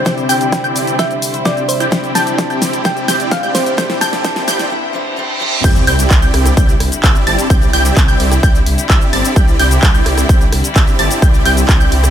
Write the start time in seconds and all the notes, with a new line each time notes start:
Already playing: D3 G3 E4 C5, riser
0.05 C3 G3 C4 D4 E4 G4 C5 D5 G5 G6, kick, snare, closed hi-hat, shaker
0.18 closed hi-hat, shaker
0.29 C4 E4 G4 D5 G5 G6, open hi-hat, shaker
0.41 closed hi-hat, shaker
0.52 kick, cross-stick, snare, closed hi-hat, shaker
0.64 C4 E4 G4 D5 G5 G6, closed hi-hat, shaker
0.76 open hi-hat, shaker
0.87 closed hi-hat, shaker
0.99 C4 E4 G4 D5 E5 G5 G6, kick, snare, closed hi-hat, shaker
1.11 closed hi-hat, shaker
1.22 open hi-hat, shaker
1.34 closed hi-hat, shaker
1.45 C3 G3 C4 D4 E4 G4 C5 D5 G5 G6, kick, snare, closed hi-hat, shaker
1.57 closed hi-hat, shaker
1.69 C5, open hi-hat, shaker
1.80 C4 E4 G4 D5 G5 G6, closed hi-hat, shaker
1.91 C3 G3 C4 D4 E4 G4 C5 D5 G5 G6, kick, snare, closed hi-hat, shaker
2.04 closed hi-hat, shaker
2.15 C4 E4 G4 D5 G5 A5 G6, snare, open hi-hat, shaker
2.27 closed hi-hat, shaker
2.38 kick, snare, closed hi-hat, shaker
2.50 C4 E4 G4 D5 G5 G6, closed hi-hat, shaker
2.62 snare, open hi-hat, shaker
2.73 closed hi-hat, shaker
2.84 C3 G3 C4 D4 E4 G4 C5 D5 G5 G6, kick, snare, closed hi-hat, shaker
2.97 closed hi-hat, shaker
3.08 C4 E4 G4 D5 G5 G6, snare, open hi-hat, shaker
3.20 closed hi-hat, shaker
3.31 F5, kick, snare, closed hi-hat, shaker
3.43 C4 E4 G4 D5 G5 G6, closed hi-hat, shaker
3.55 C5, snare, open hi-hat, shaker
3.66 closed hi-hat, shaker
3.77 C3 G3 C4 D4 E4 G4 C5 D5 G5 G6, kick, snare, closed hi-hat, shaker
3.90 snare, closed hi-hat, shaker
4.01 C4 E4 G4 D5 G5 A5 G6, snare, open hi-hat, shaker
4.13 snare, closed hi-hat, shaker
4.23 C3 G3 C4 D4 E4 G4 C5 D5 G5 G6, kick, snare, closed hi-hat, shaker
4.36 snare, closed hi-hat, shaker
4.48 C4 E4 G4 D5 G5 G6, snare, open hi-hat, shaker
4.59 snare, closed hi-hat, shaker
4.70 C3 G3 D4 E4 C5, reverse cymbal
4.93 C3 G3 D4 E4 C5
5.16 C3 G3 D4 E4 C5
5.40 C3 G3 D4 E4 C5
5.64 C2 D3 G3 C4 E4 G4 D5 G5 G6, kick, closed hi-hat, crash, sub drop, shaker
5.76 closed hi-hat, shaker
5.87 C2 C4 E4 G4 D5 G5 G6, open hi-hat
5.99 closed hi-hat, shaker
6.11 C2, kick, clap, closed hi-hat, shaker
6.22 C4 E4 G4 D5 G5 G6, closed hi-hat, shaker
6.34 C2, cross-stick, open hi-hat
6.46 cross-stick, closed hi-hat, shaker
6.57 C2 E4 G4 D5 G5 G6, kick, closed hi-hat, shaker
6.69 closed hi-hat, shaker
6.80 C2, cross-stick, open hi-hat
6.92 closed hi-hat, shaker
7.04 C2 C4 E4 G4 D5 E5 E6, kick, clap, closed hi-hat, shaker
7.15 closed hi-hat, shaker
7.27 G1 C4 E4 G4 D5 A5 A6, open hi-hat
7.39 closed hi-hat, shaker
7.50 C2 C4 E4 G4 D5 G5 G6, kick, closed hi-hat, shaker
7.62 closed hi-hat, shaker
7.73 C2 C4 E4 G4 D5 G5 G6, open hi-hat
7.85 closed hi-hat, shaker
7.97 C2, kick, clap, closed hi-hat, shaker
8.08 C4 E4 G4 D5 G5 G6, closed hi-hat, shaker
8.20 C2, open hi-hat
8.32 cross-stick, closed hi-hat, shaker
8.43 C2 C4 E4 G4 D5 G5 G6, kick, closed hi-hat, shaker
8.55 closed hi-hat, shaker
8.66 C2, open hi-hat
8.78 closed hi-hat, shaker
8.90 C2 C4 E4 G4 D5 E5 E6, kick, clap, closed hi-hat, shaker
9.01 closed hi-hat, shaker
9.13 G1 C4 E4 G4 D5 A5 A6, open hi-hat
9.25 closed hi-hat, shaker
9.36 C2 C4 E4 G4 D5 G5 G6, kick, closed hi-hat, shaker
9.48 closed hi-hat, shaker
9.59 C2 C4 E4 G4 D5 G5 G6, open hi-hat
9.71 closed hi-hat, shaker
9.83 C2, kick, clap, closed hi-hat, shaker
9.94 C4 E4 G4 D5 G5 G6, closed hi-hat, shaker
10.06 C2, cross-stick, open hi-hat
10.18 cross-stick, closed hi-hat, shaker
10.29 C2 C4 E4 D5 G6, kick, closed hi-hat, shaker
10.41 closed hi-hat, shaker
10.53 C2, cross-stick, open hi-hat
10.64 closed hi-hat, shaker
10.76 C2 C4 E4 G4 D5 E5 E6, kick, clap, closed hi-hat, shaker
10.87 closed hi-hat, shaker
10.99 G1 C4 E4 G4 D5 A5 A6, open hi-hat
11.11 closed hi-hat, shaker
11.22 C2 C4 G4 D5 G5 G6, kick, closed hi-hat, shaker
11.34 closed hi-hat, shaker
11.45 C2 C4 E4 G4 D5 G5 G6, open hi-hat
11.57 closed hi-hat, shaker
11.69 C2, kick, clap, closed hi-hat, shaker
11.80 C4 E4 G4 D5 G5 G6, closed hi-hat, shaker
11.92 C2, open hi-hat
12.04 cross-stick, closed hi-hat, shaker